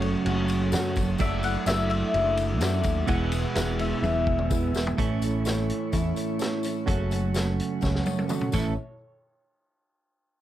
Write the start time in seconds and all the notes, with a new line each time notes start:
Already playing: F#1 F#2 C#3 F#3 A3 C#4 F#4 A4 C#5 F#5 C#6
0.01 F#3 A3 C#4 F#4 C#5, ride
0.24 F#1 F#2 C#3 F#3 A3 C#4 F#4 A4 C#5 F#5, ride
0.48 ride, tambourine
0.72 F#2 F#3 A3 C#4 F#4 A4 C#5 F#5, snare, ride, tambourine
0.96 F#1, kick, ride, tambourine
1.18 F#1 F#3 A3 D4 E4 F#4 A4 D5 E5 F#5 D6, kick, ride, tambourine
1.43 A3 D4 E4 F#5, ride, tambourine
1.66 F#1 F#3 A3 D4 F#4 A4 D5 E5, snare, ride, tambourine
1.70 E4
1.90 E5, ride
2.14 F#1 F#3 A3 D4 E4 F#4 A4 D5 E5, ride
2.37 ride, tambourine
2.60 F#2 F#3 A3 D4 E4 F#4 A4 D5 E5, snare, ride, tambourine
2.84 D#2, kick, ride, tambourine
3.07 E1 E2 B2 E3 G#3 B3 E4 G#4 B4 E5 F#5 G#5 E6, kick, ride, tambourine
3.32 E3 G#3 B3 E4, ride, tambourine
3.54 E1 E3 G#3 B3 E4 G#4 B4 E5, snare, ride, tambourine
3.58 E4
3.79 E3 G#3 B3 E4 E5, ride, tambourine
4.02 E1 E2 B2 E3 G#3 B3 E4 G#4 B4 E5, high tom, tambourine
4.27 kick
4.39 mid tom
4.50 E2 E3 G#3 B3 E4 G#4 B4 E5, kick, tambourine
4.73 E1, snare, tambourine
4.87 floor tom
4.98 A1 A2 E3 A3 C#4 E4 A4 C#5 E5 C#6, kick, closed hi-hat, tambourine
5.22 A3 C#4 E4, closed hi-hat, tambourine
5.44 E3 A3 C#4 E4 A4 C#5, snare, closed hi-hat, tambourine
5.70 closed hi-hat
5.92 E2 A2 E3 A3 C#4 E4 A4 C#5, kick, closed hi-hat, tambourine
6.15 E4 A4 C#5, closed hi-hat, tambourine
6.38 E3 A3 C#4 E4 A4 C#5, snare, closed hi-hat, tambourine
6.63 A3 C#4 E4, closed hi-hat, tambourine
6.86 F#1 F#2 C#3 F#3 A3 C#4 F#4 A4 C#5 F#5, kick, closed hi-hat, tambourine
7.10 F#3 A3 C#4 F#4, closed hi-hat, tambourine
7.34 F#3 A3 C#4 F#4 A4 C#5, snare, closed hi-hat, tambourine
7.60 closed hi-hat
7.81 C#2 F#2 C#3 F#3 A3 C#4 F#4 A4 C#5, kick, snare, tambourine
7.95 snare
8.05 F#4 A4 C#5, high tom, tambourine
8.19 high tom
8.28 F#3 A3 C#4 F#4 A4 C#5, mid tom, tambourine
8.41 mid tom
8.52 A1 A2 E3 A3 C#4 E4 A4 C#5 E5, kick, crash, tambourine